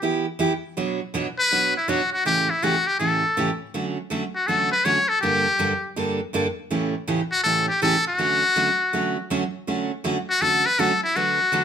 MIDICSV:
0, 0, Header, 1, 3, 480
1, 0, Start_track
1, 0, Key_signature, 2, "major"
1, 0, Tempo, 371287
1, 994, Time_signature, 4, 2, 24, 8
1, 15051, End_track
2, 0, Start_track
2, 0, Title_t, "Muted trumpet"
2, 0, Program_c, 0, 59
2, 1798, Note_on_c, 0, 71, 112
2, 2241, Note_off_c, 0, 71, 0
2, 2286, Note_on_c, 0, 64, 83
2, 2438, Note_on_c, 0, 66, 93
2, 2458, Note_off_c, 0, 64, 0
2, 2744, Note_off_c, 0, 66, 0
2, 2752, Note_on_c, 0, 66, 88
2, 2905, Note_off_c, 0, 66, 0
2, 2926, Note_on_c, 0, 67, 95
2, 3231, Note_on_c, 0, 64, 79
2, 3251, Note_off_c, 0, 67, 0
2, 3404, Note_on_c, 0, 66, 88
2, 3423, Note_off_c, 0, 64, 0
2, 3711, Note_on_c, 0, 67, 83
2, 3731, Note_off_c, 0, 66, 0
2, 3863, Note_off_c, 0, 67, 0
2, 3871, Note_on_c, 0, 69, 80
2, 4618, Note_off_c, 0, 69, 0
2, 5628, Note_on_c, 0, 66, 79
2, 5781, Note_on_c, 0, 69, 86
2, 5800, Note_off_c, 0, 66, 0
2, 6092, Note_off_c, 0, 69, 0
2, 6100, Note_on_c, 0, 71, 98
2, 6266, Note_on_c, 0, 73, 94
2, 6285, Note_off_c, 0, 71, 0
2, 6575, Note_on_c, 0, 69, 93
2, 6594, Note_off_c, 0, 73, 0
2, 6730, Note_off_c, 0, 69, 0
2, 6738, Note_on_c, 0, 67, 97
2, 7658, Note_off_c, 0, 67, 0
2, 9459, Note_on_c, 0, 66, 94
2, 9604, Note_off_c, 0, 66, 0
2, 9612, Note_on_c, 0, 69, 101
2, 9918, Note_off_c, 0, 69, 0
2, 9936, Note_on_c, 0, 67, 83
2, 10098, Note_off_c, 0, 67, 0
2, 10117, Note_on_c, 0, 69, 96
2, 10411, Note_off_c, 0, 69, 0
2, 10442, Note_on_c, 0, 66, 98
2, 11989, Note_off_c, 0, 66, 0
2, 13311, Note_on_c, 0, 66, 96
2, 13467, Note_on_c, 0, 69, 100
2, 13487, Note_off_c, 0, 66, 0
2, 13780, Note_on_c, 0, 71, 97
2, 13800, Note_off_c, 0, 69, 0
2, 13955, Note_on_c, 0, 69, 90
2, 13975, Note_off_c, 0, 71, 0
2, 14261, Note_off_c, 0, 69, 0
2, 14269, Note_on_c, 0, 64, 93
2, 14429, Note_on_c, 0, 66, 89
2, 14448, Note_off_c, 0, 64, 0
2, 15051, Note_off_c, 0, 66, 0
2, 15051, End_track
3, 0, Start_track
3, 0, Title_t, "Steel-string acoustic guitar"
3, 0, Program_c, 1, 25
3, 25, Note_on_c, 1, 52, 52
3, 33, Note_on_c, 1, 59, 52
3, 38, Note_on_c, 1, 64, 63
3, 43, Note_on_c, 1, 67, 67
3, 318, Note_off_c, 1, 52, 0
3, 322, Note_off_c, 1, 59, 0
3, 325, Note_off_c, 1, 64, 0
3, 328, Note_off_c, 1, 67, 0
3, 503, Note_on_c, 1, 52, 75
3, 509, Note_on_c, 1, 59, 75
3, 514, Note_on_c, 1, 64, 76
3, 520, Note_on_c, 1, 67, 87
3, 662, Note_off_c, 1, 52, 0
3, 665, Note_off_c, 1, 59, 0
3, 667, Note_off_c, 1, 64, 0
3, 670, Note_off_c, 1, 67, 0
3, 992, Note_on_c, 1, 47, 61
3, 997, Note_on_c, 1, 54, 55
3, 999, Note_on_c, 1, 59, 64
3, 1004, Note_on_c, 1, 62, 59
3, 1004, Note_on_c, 1, 73, 55
3, 1006, Note_on_c, 1, 66, 65
3, 1282, Note_off_c, 1, 47, 0
3, 1285, Note_off_c, 1, 54, 0
3, 1286, Note_off_c, 1, 59, 0
3, 1288, Note_off_c, 1, 62, 0
3, 1288, Note_off_c, 1, 73, 0
3, 1290, Note_off_c, 1, 66, 0
3, 1471, Note_on_c, 1, 47, 70
3, 1477, Note_on_c, 1, 54, 76
3, 1484, Note_on_c, 1, 59, 71
3, 1485, Note_on_c, 1, 62, 73
3, 1487, Note_on_c, 1, 66, 71
3, 1491, Note_on_c, 1, 73, 70
3, 1626, Note_off_c, 1, 47, 0
3, 1629, Note_off_c, 1, 54, 0
3, 1632, Note_off_c, 1, 59, 0
3, 1633, Note_off_c, 1, 62, 0
3, 1634, Note_off_c, 1, 66, 0
3, 1636, Note_off_c, 1, 73, 0
3, 1954, Note_on_c, 1, 47, 58
3, 1961, Note_on_c, 1, 54, 58
3, 1964, Note_on_c, 1, 59, 52
3, 1966, Note_on_c, 1, 62, 54
3, 1972, Note_on_c, 1, 66, 60
3, 1972, Note_on_c, 1, 73, 57
3, 2244, Note_off_c, 1, 47, 0
3, 2248, Note_off_c, 1, 54, 0
3, 2249, Note_off_c, 1, 59, 0
3, 2250, Note_off_c, 1, 62, 0
3, 2253, Note_off_c, 1, 66, 0
3, 2253, Note_off_c, 1, 73, 0
3, 2427, Note_on_c, 1, 47, 67
3, 2430, Note_on_c, 1, 54, 69
3, 2436, Note_on_c, 1, 59, 76
3, 2442, Note_on_c, 1, 62, 74
3, 2443, Note_on_c, 1, 66, 83
3, 2444, Note_on_c, 1, 73, 78
3, 2585, Note_off_c, 1, 47, 0
3, 2586, Note_off_c, 1, 54, 0
3, 2589, Note_off_c, 1, 59, 0
3, 2592, Note_off_c, 1, 62, 0
3, 2593, Note_off_c, 1, 66, 0
3, 2593, Note_off_c, 1, 73, 0
3, 2911, Note_on_c, 1, 45, 52
3, 2918, Note_on_c, 1, 49, 58
3, 2920, Note_on_c, 1, 52, 63
3, 2923, Note_on_c, 1, 57, 59
3, 2927, Note_on_c, 1, 61, 56
3, 2929, Note_on_c, 1, 67, 69
3, 3203, Note_off_c, 1, 45, 0
3, 3206, Note_off_c, 1, 49, 0
3, 3207, Note_off_c, 1, 52, 0
3, 3209, Note_off_c, 1, 57, 0
3, 3211, Note_off_c, 1, 61, 0
3, 3212, Note_off_c, 1, 67, 0
3, 3393, Note_on_c, 1, 45, 68
3, 3397, Note_on_c, 1, 49, 67
3, 3400, Note_on_c, 1, 52, 69
3, 3404, Note_on_c, 1, 57, 79
3, 3407, Note_on_c, 1, 61, 74
3, 3412, Note_on_c, 1, 67, 77
3, 3548, Note_off_c, 1, 45, 0
3, 3550, Note_off_c, 1, 49, 0
3, 3552, Note_off_c, 1, 52, 0
3, 3554, Note_off_c, 1, 57, 0
3, 3555, Note_off_c, 1, 61, 0
3, 3558, Note_off_c, 1, 67, 0
3, 3871, Note_on_c, 1, 45, 54
3, 3874, Note_on_c, 1, 49, 52
3, 3878, Note_on_c, 1, 52, 53
3, 3883, Note_on_c, 1, 57, 53
3, 3884, Note_on_c, 1, 61, 58
3, 3886, Note_on_c, 1, 67, 60
3, 4164, Note_off_c, 1, 45, 0
3, 4165, Note_off_c, 1, 49, 0
3, 4167, Note_off_c, 1, 52, 0
3, 4169, Note_off_c, 1, 57, 0
3, 4170, Note_off_c, 1, 61, 0
3, 4171, Note_off_c, 1, 67, 0
3, 4355, Note_on_c, 1, 45, 78
3, 4360, Note_on_c, 1, 49, 79
3, 4360, Note_on_c, 1, 52, 80
3, 4366, Note_on_c, 1, 57, 71
3, 4374, Note_on_c, 1, 61, 72
3, 4376, Note_on_c, 1, 67, 74
3, 4510, Note_off_c, 1, 45, 0
3, 4512, Note_off_c, 1, 49, 0
3, 4512, Note_off_c, 1, 52, 0
3, 4515, Note_off_c, 1, 57, 0
3, 4519, Note_off_c, 1, 61, 0
3, 4520, Note_off_c, 1, 67, 0
3, 4837, Note_on_c, 1, 50, 55
3, 4837, Note_on_c, 1, 54, 55
3, 4842, Note_on_c, 1, 57, 60
3, 4847, Note_on_c, 1, 66, 59
3, 4848, Note_on_c, 1, 61, 60
3, 5127, Note_off_c, 1, 50, 0
3, 5127, Note_off_c, 1, 54, 0
3, 5130, Note_off_c, 1, 57, 0
3, 5132, Note_off_c, 1, 66, 0
3, 5133, Note_off_c, 1, 61, 0
3, 5302, Note_on_c, 1, 50, 75
3, 5309, Note_on_c, 1, 54, 71
3, 5314, Note_on_c, 1, 57, 67
3, 5317, Note_on_c, 1, 61, 74
3, 5322, Note_on_c, 1, 66, 78
3, 5464, Note_off_c, 1, 50, 0
3, 5467, Note_off_c, 1, 54, 0
3, 5470, Note_off_c, 1, 57, 0
3, 5471, Note_off_c, 1, 61, 0
3, 5474, Note_off_c, 1, 66, 0
3, 5792, Note_on_c, 1, 50, 55
3, 5797, Note_on_c, 1, 54, 53
3, 5805, Note_on_c, 1, 57, 60
3, 5805, Note_on_c, 1, 61, 55
3, 5816, Note_on_c, 1, 66, 61
3, 6085, Note_off_c, 1, 50, 0
3, 6088, Note_off_c, 1, 54, 0
3, 6091, Note_off_c, 1, 57, 0
3, 6091, Note_off_c, 1, 61, 0
3, 6097, Note_off_c, 1, 66, 0
3, 6269, Note_on_c, 1, 50, 68
3, 6275, Note_on_c, 1, 54, 73
3, 6276, Note_on_c, 1, 57, 71
3, 6282, Note_on_c, 1, 61, 73
3, 6282, Note_on_c, 1, 66, 70
3, 6428, Note_off_c, 1, 50, 0
3, 6430, Note_off_c, 1, 54, 0
3, 6431, Note_off_c, 1, 57, 0
3, 6434, Note_off_c, 1, 61, 0
3, 6434, Note_off_c, 1, 66, 0
3, 6756, Note_on_c, 1, 43, 56
3, 6757, Note_on_c, 1, 50, 61
3, 6763, Note_on_c, 1, 55, 54
3, 6766, Note_on_c, 1, 58, 64
3, 6770, Note_on_c, 1, 69, 61
3, 6771, Note_on_c, 1, 62, 58
3, 7047, Note_off_c, 1, 43, 0
3, 7048, Note_off_c, 1, 50, 0
3, 7051, Note_off_c, 1, 55, 0
3, 7052, Note_off_c, 1, 58, 0
3, 7054, Note_off_c, 1, 69, 0
3, 7055, Note_off_c, 1, 62, 0
3, 7225, Note_on_c, 1, 43, 76
3, 7227, Note_on_c, 1, 50, 61
3, 7232, Note_on_c, 1, 55, 72
3, 7237, Note_on_c, 1, 58, 69
3, 7237, Note_on_c, 1, 62, 74
3, 7241, Note_on_c, 1, 69, 73
3, 7386, Note_off_c, 1, 43, 0
3, 7387, Note_off_c, 1, 50, 0
3, 7389, Note_off_c, 1, 55, 0
3, 7392, Note_off_c, 1, 58, 0
3, 7392, Note_off_c, 1, 62, 0
3, 7394, Note_off_c, 1, 69, 0
3, 7710, Note_on_c, 1, 43, 55
3, 7710, Note_on_c, 1, 50, 55
3, 7714, Note_on_c, 1, 55, 60
3, 7718, Note_on_c, 1, 58, 63
3, 7720, Note_on_c, 1, 62, 62
3, 7724, Note_on_c, 1, 69, 64
3, 8004, Note_off_c, 1, 43, 0
3, 8004, Note_off_c, 1, 50, 0
3, 8006, Note_off_c, 1, 55, 0
3, 8008, Note_off_c, 1, 58, 0
3, 8009, Note_off_c, 1, 62, 0
3, 8011, Note_off_c, 1, 69, 0
3, 8185, Note_on_c, 1, 43, 64
3, 8193, Note_on_c, 1, 50, 73
3, 8195, Note_on_c, 1, 55, 73
3, 8198, Note_on_c, 1, 58, 81
3, 8204, Note_on_c, 1, 62, 71
3, 8209, Note_on_c, 1, 69, 78
3, 8346, Note_off_c, 1, 43, 0
3, 8350, Note_off_c, 1, 50, 0
3, 8351, Note_off_c, 1, 55, 0
3, 8353, Note_off_c, 1, 58, 0
3, 8355, Note_off_c, 1, 62, 0
3, 8358, Note_off_c, 1, 69, 0
3, 8668, Note_on_c, 1, 45, 59
3, 8669, Note_on_c, 1, 49, 53
3, 8672, Note_on_c, 1, 52, 58
3, 8675, Note_on_c, 1, 57, 67
3, 8682, Note_on_c, 1, 61, 60
3, 8688, Note_on_c, 1, 67, 63
3, 8963, Note_off_c, 1, 45, 0
3, 8964, Note_off_c, 1, 49, 0
3, 8965, Note_off_c, 1, 52, 0
3, 8967, Note_off_c, 1, 57, 0
3, 8970, Note_off_c, 1, 61, 0
3, 8973, Note_off_c, 1, 67, 0
3, 9146, Note_on_c, 1, 45, 73
3, 9149, Note_on_c, 1, 49, 76
3, 9153, Note_on_c, 1, 52, 74
3, 9155, Note_on_c, 1, 57, 69
3, 9159, Note_on_c, 1, 61, 66
3, 9162, Note_on_c, 1, 67, 74
3, 9306, Note_off_c, 1, 45, 0
3, 9308, Note_off_c, 1, 49, 0
3, 9310, Note_off_c, 1, 52, 0
3, 9310, Note_off_c, 1, 57, 0
3, 9313, Note_off_c, 1, 61, 0
3, 9314, Note_off_c, 1, 67, 0
3, 9625, Note_on_c, 1, 45, 56
3, 9629, Note_on_c, 1, 49, 51
3, 9634, Note_on_c, 1, 52, 62
3, 9636, Note_on_c, 1, 57, 65
3, 9643, Note_on_c, 1, 67, 65
3, 9644, Note_on_c, 1, 61, 56
3, 9921, Note_off_c, 1, 45, 0
3, 9923, Note_off_c, 1, 49, 0
3, 9926, Note_off_c, 1, 52, 0
3, 9927, Note_off_c, 1, 57, 0
3, 9930, Note_off_c, 1, 67, 0
3, 9931, Note_off_c, 1, 61, 0
3, 10105, Note_on_c, 1, 45, 66
3, 10109, Note_on_c, 1, 49, 75
3, 10113, Note_on_c, 1, 52, 72
3, 10116, Note_on_c, 1, 57, 74
3, 10121, Note_on_c, 1, 67, 84
3, 10122, Note_on_c, 1, 61, 80
3, 10265, Note_off_c, 1, 45, 0
3, 10267, Note_off_c, 1, 49, 0
3, 10269, Note_off_c, 1, 52, 0
3, 10271, Note_off_c, 1, 57, 0
3, 10273, Note_off_c, 1, 67, 0
3, 10274, Note_off_c, 1, 61, 0
3, 10580, Note_on_c, 1, 50, 55
3, 10585, Note_on_c, 1, 54, 56
3, 10590, Note_on_c, 1, 57, 61
3, 10592, Note_on_c, 1, 61, 65
3, 10600, Note_on_c, 1, 66, 66
3, 10878, Note_off_c, 1, 50, 0
3, 10880, Note_off_c, 1, 54, 0
3, 10883, Note_off_c, 1, 57, 0
3, 10884, Note_off_c, 1, 61, 0
3, 10888, Note_off_c, 1, 66, 0
3, 11065, Note_on_c, 1, 50, 74
3, 11069, Note_on_c, 1, 54, 67
3, 11072, Note_on_c, 1, 57, 63
3, 11078, Note_on_c, 1, 61, 63
3, 11080, Note_on_c, 1, 66, 76
3, 11225, Note_off_c, 1, 50, 0
3, 11227, Note_off_c, 1, 54, 0
3, 11228, Note_off_c, 1, 57, 0
3, 11231, Note_off_c, 1, 61, 0
3, 11232, Note_off_c, 1, 66, 0
3, 11544, Note_on_c, 1, 50, 55
3, 11551, Note_on_c, 1, 54, 61
3, 11552, Note_on_c, 1, 57, 55
3, 11562, Note_on_c, 1, 61, 65
3, 11564, Note_on_c, 1, 66, 63
3, 11839, Note_off_c, 1, 50, 0
3, 11843, Note_off_c, 1, 54, 0
3, 11843, Note_off_c, 1, 57, 0
3, 11848, Note_off_c, 1, 61, 0
3, 11849, Note_off_c, 1, 66, 0
3, 12027, Note_on_c, 1, 50, 65
3, 12035, Note_on_c, 1, 54, 74
3, 12036, Note_on_c, 1, 57, 77
3, 12037, Note_on_c, 1, 61, 85
3, 12041, Note_on_c, 1, 66, 83
3, 12184, Note_off_c, 1, 50, 0
3, 12188, Note_off_c, 1, 54, 0
3, 12189, Note_off_c, 1, 57, 0
3, 12190, Note_off_c, 1, 61, 0
3, 12192, Note_off_c, 1, 66, 0
3, 12506, Note_on_c, 1, 50, 61
3, 12510, Note_on_c, 1, 54, 51
3, 12513, Note_on_c, 1, 57, 58
3, 12514, Note_on_c, 1, 61, 65
3, 12521, Note_on_c, 1, 66, 58
3, 12799, Note_off_c, 1, 50, 0
3, 12801, Note_off_c, 1, 54, 0
3, 12803, Note_off_c, 1, 57, 0
3, 12804, Note_off_c, 1, 61, 0
3, 12807, Note_off_c, 1, 66, 0
3, 12980, Note_on_c, 1, 50, 69
3, 12986, Note_on_c, 1, 54, 67
3, 12986, Note_on_c, 1, 57, 78
3, 12993, Note_on_c, 1, 61, 74
3, 12997, Note_on_c, 1, 66, 79
3, 13140, Note_off_c, 1, 50, 0
3, 13143, Note_off_c, 1, 54, 0
3, 13143, Note_off_c, 1, 57, 0
3, 13147, Note_off_c, 1, 61, 0
3, 13148, Note_off_c, 1, 66, 0
3, 13460, Note_on_c, 1, 50, 50
3, 13464, Note_on_c, 1, 54, 54
3, 13465, Note_on_c, 1, 57, 55
3, 13473, Note_on_c, 1, 61, 57
3, 13476, Note_on_c, 1, 66, 56
3, 13755, Note_off_c, 1, 50, 0
3, 13757, Note_off_c, 1, 54, 0
3, 13758, Note_off_c, 1, 57, 0
3, 13762, Note_off_c, 1, 61, 0
3, 13763, Note_off_c, 1, 66, 0
3, 13945, Note_on_c, 1, 50, 74
3, 13949, Note_on_c, 1, 54, 70
3, 13953, Note_on_c, 1, 61, 75
3, 13954, Note_on_c, 1, 57, 75
3, 13958, Note_on_c, 1, 66, 91
3, 14101, Note_off_c, 1, 50, 0
3, 14103, Note_off_c, 1, 54, 0
3, 14105, Note_off_c, 1, 61, 0
3, 14106, Note_off_c, 1, 57, 0
3, 14108, Note_off_c, 1, 66, 0
3, 14421, Note_on_c, 1, 50, 55
3, 14428, Note_on_c, 1, 54, 54
3, 14431, Note_on_c, 1, 57, 67
3, 14436, Note_on_c, 1, 62, 63
3, 14438, Note_on_c, 1, 66, 62
3, 14441, Note_on_c, 1, 71, 64
3, 14715, Note_off_c, 1, 50, 0
3, 14718, Note_off_c, 1, 54, 0
3, 14719, Note_off_c, 1, 57, 0
3, 14722, Note_off_c, 1, 62, 0
3, 14723, Note_off_c, 1, 66, 0
3, 14724, Note_off_c, 1, 71, 0
3, 14892, Note_on_c, 1, 50, 69
3, 14898, Note_on_c, 1, 54, 72
3, 14902, Note_on_c, 1, 57, 73
3, 14906, Note_on_c, 1, 62, 80
3, 14911, Note_on_c, 1, 71, 75
3, 14912, Note_on_c, 1, 66, 67
3, 15051, Note_off_c, 1, 50, 0
3, 15051, Note_off_c, 1, 54, 0
3, 15051, Note_off_c, 1, 57, 0
3, 15051, Note_off_c, 1, 62, 0
3, 15051, Note_off_c, 1, 66, 0
3, 15051, Note_off_c, 1, 71, 0
3, 15051, End_track
0, 0, End_of_file